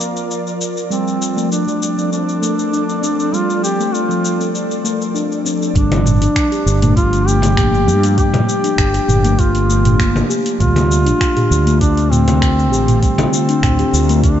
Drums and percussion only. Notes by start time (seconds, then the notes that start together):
0.01 shaker
0.17 shaker
0.31 shaker
0.47 shaker
0.61 shaker
0.77 shaker
0.92 shaker
1.08 shaker
1.22 shaker
1.38 shaker
1.52 shaker
1.68 shaker
1.83 shaker
1.99 shaker
2.13 shaker
2.29 shaker
2.43 shaker
2.59 shaker
2.73 shaker
2.89 shaker
3.04 shaker
3.20 shaker
3.34 shaker
3.50 shaker
3.64 shaker
3.81 shaker
3.95 shaker
4.11 shaker
4.25 shaker
4.41 shaker
4.55 shaker
4.71 shaker
4.85 shaker
5.01 shaker
5.16 shaker
5.32 shaker
5.46 shaker
5.62 shaker
5.75 kick, closed hi-hat, shaker
5.92 closed hi-hat, frame drum, shaker
6.06 mid tom, shaker
6.22 closed hi-hat, shaker
6.36 finger snap, kick, closed hi-hat, shaker
6.52 closed hi-hat, shaker
6.67 shaker
6.82 closed hi-hat, mid tom, shaker
6.97 kick, closed hi-hat, shaker
7.13 closed hi-hat, shaker
7.28 shaker
7.42 closed hi-hat, frame drum, shaker
7.57 finger snap, kick, closed hi-hat, mid tom, shaker
7.74 shaker
7.89 shaker
8.03 closed hi-hat, shaker
8.18 kick, closed hi-hat, shaker
8.34 closed hi-hat, mid tom, frame drum, shaker
8.49 shaker
8.64 closed hi-hat, shaker
8.78 finger snap, kick, closed hi-hat, shaker
8.94 closed hi-hat, shaker
9.08 mid tom, shaker
9.24 closed hi-hat, shaker
9.39 kick, closed hi-hat, shaker
9.55 closed hi-hat, shaker
9.70 shaker
9.85 closed hi-hat, mid tom, shaker
10.00 finger snap, kick, closed hi-hat, shaker
10.16 frame drum, shaker
10.31 shaker
10.46 closed hi-hat, shaker
10.60 kick, closed hi-hat, mid tom, shaker
10.76 closed hi-hat, frame drum, shaker
10.92 shaker
11.06 closed hi-hat, shaker
11.21 finger snap, kick, closed hi-hat, shaker
11.37 closed hi-hat, mid tom, shaker
11.52 shaker
11.67 closed hi-hat, shaker
11.81 kick, closed hi-hat, shaker
11.97 closed hi-hat, shaker
12.12 mid tom, shaker
12.28 closed hi-hat, frame drum, shaker
12.42 finger snap, kick, closed hi-hat, shaker
12.59 shaker
12.73 shaker
12.88 closed hi-hat, mid tom, shaker
13.02 kick, closed hi-hat, shaker
13.18 closed hi-hat, frame drum, shaker
13.33 shaker
13.49 closed hi-hat, shaker
13.63 finger snap, kick, closed hi-hat, mid tom, shaker
13.79 closed hi-hat, shaker
13.94 shaker
14.09 closed hi-hat, shaker
14.24 kick, closed hi-hat, shaker